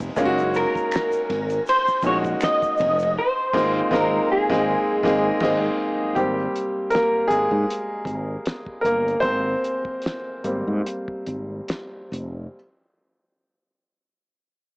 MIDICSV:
0, 0, Header, 1, 6, 480
1, 0, Start_track
1, 0, Key_signature, -4, "major"
1, 0, Tempo, 750000
1, 102, Time_signature, 4, 2, 24, 8
1, 4422, Tempo, 769231
1, 5862, Tempo, 818554
1, 7302, Tempo, 878477
1, 8989, End_track
2, 0, Start_track
2, 0, Title_t, "Clean electric guitar"
2, 0, Program_c, 0, 27
2, 360, Note_on_c, 0, 70, 93
2, 1045, Note_off_c, 0, 70, 0
2, 1082, Note_on_c, 0, 72, 104
2, 1296, Note_off_c, 0, 72, 0
2, 1322, Note_on_c, 0, 73, 94
2, 1384, Note_off_c, 0, 73, 0
2, 1561, Note_on_c, 0, 75, 118
2, 2036, Note_off_c, 0, 75, 0
2, 2038, Note_on_c, 0, 72, 98
2, 2523, Note_on_c, 0, 70, 84
2, 2524, Note_off_c, 0, 72, 0
2, 2760, Note_off_c, 0, 70, 0
2, 2762, Note_on_c, 0, 68, 90
2, 3447, Note_off_c, 0, 68, 0
2, 8989, End_track
3, 0, Start_track
3, 0, Title_t, "Grand piano"
3, 0, Program_c, 1, 0
3, 0, Control_c, 1, 64, 127
3, 0, Note_on_c, 1, 56, 100
3, 0, Note_on_c, 1, 58, 89
3, 0, Note_on_c, 1, 59, 69
3, 0, Note_on_c, 1, 60, 82
3, 0, Note_on_c, 1, 63, 83
3, 0, Note_on_c, 1, 67, 96
3, 105, Note_off_c, 1, 56, 0
3, 105, Note_on_c, 1, 56, 96
3, 107, Note_off_c, 1, 58, 0
3, 107, Note_on_c, 1, 58, 92
3, 109, Control_c, 1, 64, 0
3, 112, Note_on_c, 1, 61, 94
3, 113, Note_off_c, 1, 59, 0
3, 113, Note_off_c, 1, 60, 0
3, 113, Note_off_c, 1, 63, 0
3, 115, Note_off_c, 1, 67, 0
3, 116, Note_on_c, 1, 63, 83
3, 119, Note_on_c, 1, 65, 81
3, 158, Note_off_c, 1, 65, 0
3, 162, Note_on_c, 1, 66, 112
3, 209, Control_c, 1, 64, 127
3, 935, Note_off_c, 1, 56, 0
3, 937, Note_off_c, 1, 58, 0
3, 939, Note_off_c, 1, 61, 0
3, 941, Note_off_c, 1, 63, 0
3, 964, Note_off_c, 1, 66, 0
3, 1305, Note_on_c, 1, 56, 81
3, 1309, Note_on_c, 1, 58, 74
3, 1313, Note_on_c, 1, 61, 70
3, 1316, Note_on_c, 1, 63, 80
3, 1322, Note_on_c, 1, 66, 91
3, 1932, Note_off_c, 1, 56, 0
3, 1934, Note_off_c, 1, 58, 0
3, 1936, Note_off_c, 1, 61, 0
3, 1937, Note_off_c, 1, 63, 0
3, 1941, Note_off_c, 1, 66, 0
3, 2030, Control_c, 1, 64, 0
3, 2139, Control_c, 1, 64, 127
3, 2263, Note_on_c, 1, 56, 100
3, 2266, Note_on_c, 1, 58, 106
3, 2272, Note_on_c, 1, 60, 102
3, 2274, Note_on_c, 1, 63, 98
3, 2278, Note_on_c, 1, 65, 92
3, 2431, Note_off_c, 1, 56, 0
3, 2433, Note_off_c, 1, 58, 0
3, 2437, Note_off_c, 1, 60, 0
3, 2438, Note_off_c, 1, 63, 0
3, 2440, Note_off_c, 1, 65, 0
3, 2503, Note_on_c, 1, 56, 104
3, 2507, Note_on_c, 1, 58, 110
3, 2511, Note_on_c, 1, 60, 111
3, 2514, Note_on_c, 1, 63, 113
3, 2520, Note_on_c, 1, 65, 109
3, 2671, Note_off_c, 1, 56, 0
3, 2674, Note_off_c, 1, 58, 0
3, 2676, Note_off_c, 1, 60, 0
3, 2678, Note_off_c, 1, 63, 0
3, 2681, Note_off_c, 1, 65, 0
3, 2878, Note_on_c, 1, 56, 114
3, 2882, Note_on_c, 1, 58, 104
3, 2885, Note_on_c, 1, 60, 106
3, 2889, Note_on_c, 1, 63, 98
3, 2893, Note_on_c, 1, 68, 107
3, 3036, Note_off_c, 1, 56, 0
3, 3038, Note_off_c, 1, 58, 0
3, 3040, Note_off_c, 1, 60, 0
3, 3042, Note_off_c, 1, 63, 0
3, 3044, Note_off_c, 1, 68, 0
3, 3222, Note_on_c, 1, 56, 105
3, 3225, Note_on_c, 1, 58, 108
3, 3229, Note_on_c, 1, 60, 98
3, 3234, Note_on_c, 1, 63, 109
3, 3238, Note_on_c, 1, 68, 102
3, 3391, Note_off_c, 1, 56, 0
3, 3393, Note_off_c, 1, 58, 0
3, 3395, Note_off_c, 1, 60, 0
3, 3398, Note_off_c, 1, 63, 0
3, 3400, Note_off_c, 1, 68, 0
3, 3461, Note_on_c, 1, 56, 101
3, 3465, Note_on_c, 1, 58, 93
3, 3470, Note_on_c, 1, 60, 97
3, 3473, Note_on_c, 1, 63, 104
3, 3475, Note_on_c, 1, 68, 102
3, 3630, Note_off_c, 1, 56, 0
3, 3632, Note_off_c, 1, 58, 0
3, 3635, Note_off_c, 1, 60, 0
3, 3637, Note_off_c, 1, 63, 0
3, 3638, Note_off_c, 1, 68, 0
3, 3937, Note_on_c, 1, 67, 85
3, 3948, Note_on_c, 1, 55, 61
3, 3949, Control_c, 1, 64, 0
3, 3950, Note_on_c, 1, 58, 51
3, 3955, Note_on_c, 1, 60, 63
3, 4067, Control_c, 1, 64, 127
3, 4404, Note_off_c, 1, 55, 0
3, 4418, Note_on_c, 1, 70, 90
3, 4432, Note_off_c, 1, 58, 0
3, 4435, Note_off_c, 1, 67, 0
3, 4442, Note_on_c, 1, 58, 70
3, 4641, Note_off_c, 1, 60, 0
3, 4650, Note_on_c, 1, 68, 99
3, 4653, Note_off_c, 1, 58, 0
3, 4664, Note_off_c, 1, 70, 0
3, 4675, Note_on_c, 1, 56, 62
3, 5601, Note_off_c, 1, 56, 0
3, 5610, Note_on_c, 1, 70, 83
3, 5637, Note_on_c, 1, 58, 68
3, 5643, Note_off_c, 1, 68, 0
3, 5853, Note_on_c, 1, 72, 94
3, 5856, Note_off_c, 1, 58, 0
3, 5866, Note_off_c, 1, 70, 0
3, 5879, Note_on_c, 1, 60, 71
3, 6577, Note_off_c, 1, 60, 0
3, 6580, Note_on_c, 1, 55, 46
3, 6582, Note_on_c, 1, 58, 48
3, 6586, Note_on_c, 1, 60, 50
3, 7285, Note_off_c, 1, 55, 0
3, 7287, Note_off_c, 1, 58, 0
3, 7289, Note_off_c, 1, 60, 0
3, 7512, Note_off_c, 1, 72, 0
3, 7785, Control_c, 1, 64, 0
3, 8989, End_track
4, 0, Start_track
4, 0, Title_t, "Fretless electric bass"
4, 0, Program_c, 2, 35
4, 110, Note_on_c, 2, 30, 97
4, 404, Note_off_c, 2, 30, 0
4, 828, Note_on_c, 2, 32, 87
4, 1015, Note_off_c, 2, 32, 0
4, 1299, Note_on_c, 2, 34, 90
4, 1490, Note_off_c, 2, 34, 0
4, 1790, Note_on_c, 2, 29, 101
4, 2026, Note_off_c, 2, 29, 0
4, 2266, Note_on_c, 2, 32, 104
4, 2433, Note_off_c, 2, 32, 0
4, 2505, Note_on_c, 2, 32, 115
4, 2672, Note_off_c, 2, 32, 0
4, 2882, Note_on_c, 2, 32, 101
4, 3038, Note_off_c, 2, 32, 0
4, 3226, Note_on_c, 2, 32, 110
4, 3393, Note_off_c, 2, 32, 0
4, 3463, Note_on_c, 2, 32, 110
4, 3632, Note_off_c, 2, 32, 0
4, 3947, Note_on_c, 2, 32, 84
4, 4135, Note_off_c, 2, 32, 0
4, 4666, Note_on_c, 2, 32, 73
4, 4770, Note_off_c, 2, 32, 0
4, 4802, Note_on_c, 2, 44, 84
4, 4880, Note_off_c, 2, 44, 0
4, 5137, Note_on_c, 2, 32, 83
4, 5327, Note_off_c, 2, 32, 0
4, 5628, Note_on_c, 2, 31, 72
4, 5818, Note_off_c, 2, 31, 0
4, 5869, Note_on_c, 2, 32, 85
4, 6051, Note_off_c, 2, 32, 0
4, 6580, Note_on_c, 2, 32, 72
4, 6684, Note_off_c, 2, 32, 0
4, 6717, Note_on_c, 2, 44, 76
4, 6795, Note_off_c, 2, 44, 0
4, 7065, Note_on_c, 2, 32, 70
4, 7258, Note_off_c, 2, 32, 0
4, 7545, Note_on_c, 2, 29, 79
4, 7732, Note_off_c, 2, 29, 0
4, 8989, End_track
5, 0, Start_track
5, 0, Title_t, "Muted fretless electric bass strokes"
5, 485, Note_on_c, 9, 29, 55
5, 549, Note_off_c, 9, 29, 0
5, 1204, Note_on_c, 9, 29, 51
5, 1268, Note_off_c, 9, 29, 0
5, 1681, Note_on_c, 9, 29, 46
5, 1745, Note_off_c, 9, 29, 0
5, 8989, End_track
6, 0, Start_track
6, 0, Title_t, "Drums"
6, 0, Note_on_c, 9, 82, 61
6, 2, Note_on_c, 9, 36, 100
6, 19, Note_on_c, 9, 51, 37
6, 62, Note_off_c, 9, 82, 0
6, 66, Note_off_c, 9, 36, 0
6, 83, Note_off_c, 9, 51, 0
6, 105, Note_on_c, 9, 82, 81
6, 106, Note_on_c, 9, 36, 118
6, 112, Note_on_c, 9, 51, 59
6, 114, Note_on_c, 9, 44, 73
6, 169, Note_off_c, 9, 82, 0
6, 170, Note_off_c, 9, 36, 0
6, 176, Note_off_c, 9, 51, 0
6, 178, Note_off_c, 9, 44, 0
6, 245, Note_on_c, 9, 82, 48
6, 309, Note_off_c, 9, 82, 0
6, 345, Note_on_c, 9, 82, 52
6, 361, Note_on_c, 9, 51, 60
6, 409, Note_off_c, 9, 82, 0
6, 425, Note_off_c, 9, 51, 0
6, 482, Note_on_c, 9, 36, 100
6, 488, Note_on_c, 9, 82, 43
6, 546, Note_off_c, 9, 36, 0
6, 552, Note_off_c, 9, 82, 0
6, 584, Note_on_c, 9, 51, 58
6, 589, Note_on_c, 9, 26, 67
6, 589, Note_on_c, 9, 82, 70
6, 612, Note_on_c, 9, 38, 116
6, 648, Note_off_c, 9, 51, 0
6, 653, Note_off_c, 9, 26, 0
6, 653, Note_off_c, 9, 82, 0
6, 676, Note_off_c, 9, 38, 0
6, 716, Note_on_c, 9, 82, 52
6, 780, Note_off_c, 9, 82, 0
6, 831, Note_on_c, 9, 51, 57
6, 839, Note_on_c, 9, 38, 32
6, 895, Note_off_c, 9, 51, 0
6, 903, Note_off_c, 9, 38, 0
6, 958, Note_on_c, 9, 51, 37
6, 959, Note_on_c, 9, 82, 53
6, 1022, Note_off_c, 9, 51, 0
6, 1023, Note_off_c, 9, 82, 0
6, 1067, Note_on_c, 9, 82, 64
6, 1082, Note_on_c, 9, 51, 76
6, 1131, Note_off_c, 9, 82, 0
6, 1146, Note_off_c, 9, 51, 0
6, 1198, Note_on_c, 9, 82, 52
6, 1262, Note_off_c, 9, 82, 0
6, 1293, Note_on_c, 9, 82, 49
6, 1297, Note_on_c, 9, 36, 94
6, 1306, Note_on_c, 9, 51, 63
6, 1357, Note_off_c, 9, 82, 0
6, 1361, Note_off_c, 9, 36, 0
6, 1370, Note_off_c, 9, 51, 0
6, 1435, Note_on_c, 9, 51, 35
6, 1438, Note_on_c, 9, 82, 50
6, 1440, Note_on_c, 9, 36, 95
6, 1499, Note_off_c, 9, 51, 0
6, 1502, Note_off_c, 9, 82, 0
6, 1504, Note_off_c, 9, 36, 0
6, 1541, Note_on_c, 9, 26, 69
6, 1541, Note_on_c, 9, 82, 74
6, 1549, Note_on_c, 9, 51, 72
6, 1559, Note_on_c, 9, 38, 105
6, 1605, Note_off_c, 9, 26, 0
6, 1605, Note_off_c, 9, 82, 0
6, 1613, Note_off_c, 9, 51, 0
6, 1623, Note_off_c, 9, 38, 0
6, 1679, Note_on_c, 9, 36, 95
6, 1680, Note_on_c, 9, 82, 45
6, 1743, Note_off_c, 9, 36, 0
6, 1744, Note_off_c, 9, 82, 0
6, 1773, Note_on_c, 9, 82, 44
6, 1795, Note_on_c, 9, 51, 67
6, 1837, Note_off_c, 9, 82, 0
6, 1859, Note_off_c, 9, 51, 0
6, 1912, Note_on_c, 9, 82, 54
6, 1936, Note_on_c, 9, 51, 37
6, 1976, Note_off_c, 9, 82, 0
6, 2000, Note_off_c, 9, 51, 0
6, 2262, Note_on_c, 9, 36, 111
6, 2263, Note_on_c, 9, 49, 85
6, 2282, Note_on_c, 9, 38, 101
6, 2326, Note_off_c, 9, 36, 0
6, 2327, Note_off_c, 9, 49, 0
6, 2346, Note_off_c, 9, 38, 0
6, 2502, Note_on_c, 9, 36, 113
6, 2522, Note_on_c, 9, 38, 107
6, 2566, Note_off_c, 9, 36, 0
6, 2586, Note_off_c, 9, 38, 0
6, 2878, Note_on_c, 9, 36, 109
6, 2898, Note_on_c, 9, 38, 115
6, 2942, Note_off_c, 9, 36, 0
6, 2962, Note_off_c, 9, 38, 0
6, 3222, Note_on_c, 9, 36, 114
6, 3239, Note_on_c, 9, 38, 111
6, 3286, Note_off_c, 9, 36, 0
6, 3303, Note_off_c, 9, 38, 0
6, 3458, Note_on_c, 9, 49, 83
6, 3462, Note_on_c, 9, 36, 118
6, 3477, Note_on_c, 9, 38, 111
6, 3522, Note_off_c, 9, 49, 0
6, 3526, Note_off_c, 9, 36, 0
6, 3541, Note_off_c, 9, 38, 0
6, 3944, Note_on_c, 9, 36, 107
6, 3944, Note_on_c, 9, 42, 69
6, 4008, Note_off_c, 9, 36, 0
6, 4008, Note_off_c, 9, 42, 0
6, 4196, Note_on_c, 9, 42, 57
6, 4260, Note_off_c, 9, 42, 0
6, 4420, Note_on_c, 9, 42, 59
6, 4447, Note_on_c, 9, 38, 106
6, 4482, Note_off_c, 9, 42, 0
6, 4510, Note_off_c, 9, 38, 0
6, 4669, Note_on_c, 9, 42, 56
6, 4731, Note_off_c, 9, 42, 0
6, 4798, Note_on_c, 9, 36, 73
6, 4860, Note_off_c, 9, 36, 0
6, 4917, Note_on_c, 9, 42, 83
6, 4979, Note_off_c, 9, 42, 0
6, 5134, Note_on_c, 9, 36, 81
6, 5144, Note_on_c, 9, 42, 65
6, 5196, Note_off_c, 9, 36, 0
6, 5207, Note_off_c, 9, 42, 0
6, 5386, Note_on_c, 9, 42, 76
6, 5395, Note_on_c, 9, 38, 90
6, 5448, Note_off_c, 9, 42, 0
6, 5458, Note_off_c, 9, 38, 0
6, 5517, Note_on_c, 9, 36, 88
6, 5579, Note_off_c, 9, 36, 0
6, 5633, Note_on_c, 9, 42, 70
6, 5696, Note_off_c, 9, 42, 0
6, 5775, Note_on_c, 9, 42, 30
6, 5838, Note_off_c, 9, 42, 0
6, 5866, Note_on_c, 9, 36, 104
6, 5866, Note_on_c, 9, 42, 63
6, 5924, Note_off_c, 9, 42, 0
6, 5925, Note_off_c, 9, 36, 0
6, 6110, Note_on_c, 9, 42, 54
6, 6169, Note_off_c, 9, 42, 0
6, 6232, Note_on_c, 9, 36, 78
6, 6291, Note_off_c, 9, 36, 0
6, 6331, Note_on_c, 9, 42, 61
6, 6357, Note_on_c, 9, 38, 91
6, 6390, Note_off_c, 9, 42, 0
6, 6416, Note_off_c, 9, 38, 0
6, 6581, Note_on_c, 9, 42, 55
6, 6639, Note_off_c, 9, 42, 0
6, 6828, Note_on_c, 9, 42, 76
6, 6886, Note_off_c, 9, 42, 0
6, 6955, Note_on_c, 9, 36, 73
6, 7013, Note_off_c, 9, 36, 0
6, 7063, Note_on_c, 9, 42, 63
6, 7122, Note_off_c, 9, 42, 0
6, 7308, Note_on_c, 9, 42, 67
6, 7317, Note_on_c, 9, 38, 84
6, 7363, Note_off_c, 9, 42, 0
6, 7371, Note_off_c, 9, 38, 0
6, 7553, Note_on_c, 9, 42, 59
6, 7608, Note_off_c, 9, 42, 0
6, 8989, End_track
0, 0, End_of_file